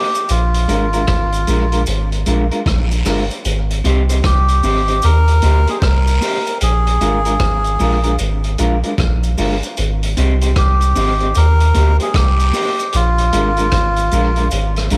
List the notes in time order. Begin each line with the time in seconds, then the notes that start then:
Already playing: G4
0.15 closed hi-hat, cabasa
0.29 A#1 F4, closed hi-hat, cabasa
0.54 closed hi-hat
0.68 G#1 G#3 D4 F4 A#4, closed hi-hat, cabasa
0.93 G#3 D4 F4 A#4, closed hi-hat, cabasa
1.07 G#1, kick, cross-stick, closed hi-hat
1.32 closed hi-hat, cabasa
1.47 A#1 G#3 D4 F4 A#4, closed hi-hat, cabasa
1.72 G#3 D4 F4 A#4, closed hi-hat
1.86 G#1, closed hi-hat, cabasa
2.12 closed hi-hat
2.26 A#1 G#3 D4 F4 A#4, closed hi-hat, cabasa
2.51 G#3 D4 F4 A#4, closed hi-hat
2.66 A#1, kick, cross-stick, closed hi-hat, long guiro
2.91 closed hi-hat, cabasa
3.05 G1 G#3 D4 F4 A#4, cross-stick, open hi-hat, cabasa
3.31 closed hi-hat, cabasa
3.45 G#1, closed hi-hat, cabasa
3.70 closed hi-hat
3.84 C2 C4 D#4 G4 C5, closed hi-hat, cabasa
4.09 C4 D#4 G4 C5, closed hi-hat, cabasa
4.24 C2 G4, kick, cross-stick, closed hi-hat
4.48 closed hi-hat, cabasa
4.63 G#1 C4 D#4 G4 C5, open hi-hat, cabasa
4.88 C4 D#4 G4 C5, closed hi-hat
5.02 D#2 A#4, closed hi-hat, cabasa
5.28 closed hi-hat
5.42 D2 A#3 D#4 G4 C5, closed hi-hat, cabasa
5.67 A#3 D#4 G4 G#4 C5, closed hi-hat
5.79 C2 C5, kick, closed hi-hat, long guiro
5.83 A#4, cross-stick
6.07 closed hi-hat, cabasa
6.21 A#3 D#4 G4 C5, open hi-hat, cabasa
6.47 closed hi-hat, cabasa
6.61 A#1 G#4, closed hi-hat, cabasa
6.87 closed hi-hat
7.01 G#1 G#3 D4 F4 A#4, closed hi-hat, cabasa
7.25 G#3 D4 F4 A#4, closed hi-hat, cabasa
7.40 G#1, kick, cross-stick, closed hi-hat
7.64 closed hi-hat, cabasa
7.79 A#1 G#3 D4 F4 A#4, open hi-hat, cabasa
8.03 G#3 D4 F4 A#4, closed hi-hat
8.18 G#1, closed hi-hat, cabasa
8.44 closed hi-hat
8.58 A#1 G#3 D4 F4 A#4, closed hi-hat, cabasa
8.83 G#3 D4 F4 A#4, closed hi-hat
8.98 A#1, kick, cross-stick, closed hi-hat
9.23 closed hi-hat, cabasa
9.38 G1 G#3 D4 F4 A#4, open hi-hat, cabasa
9.63 closed hi-hat, cabasa
9.77 G#1, closed hi-hat, cabasa
10.03 closed hi-hat
10.17 C2 C4 D#4 G4 C5, closed hi-hat, cabasa
10.41 C4 D#4 G4 C5, closed hi-hat, cabasa
10.56 C2 G4, kick, cross-stick, closed hi-hat
10.81 closed hi-hat, cabasa
10.95 G#1 C4 D#4 G4 C5, open hi-hat, cabasa
11.20 C4 D#4 G4 C5, closed hi-hat
11.35 D#2 A#4, closed hi-hat, cabasa
11.60 closed hi-hat
11.74 D2 A#3 D#4 G4 C5, closed hi-hat, cabasa
12.00 A#3 D#4 G4 G#4 C5, closed hi-hat
12.14 C2 G4, kick, cross-stick, closed hi-hat, long guiro
12.39 closed hi-hat, cabasa
12.53 A#3 D#4 G4 C5, open hi-hat, cabasa
12.79 closed hi-hat, cabasa
12.93 A#1 F4, closed hi-hat, cabasa
13.18 closed hi-hat
13.33 G#1 G#3 D4 F4 A#4, closed hi-hat, cabasa
13.57 G#3 D4 F4 A#4, closed hi-hat, cabasa
13.72 G#1, kick, cross-stick, closed hi-hat
13.96 closed hi-hat, cabasa
14.11 A#1 G#3 D4 F4 A#4, closed hi-hat, cabasa
14.36 G#3 D4 F4 A#4, closed hi-hat
14.51 G#1, closed hi-hat, cabasa
14.76 cross-stick, closed hi-hat
14.90 A#1 G#3 D4 F4 A#4, closed hi-hat, cabasa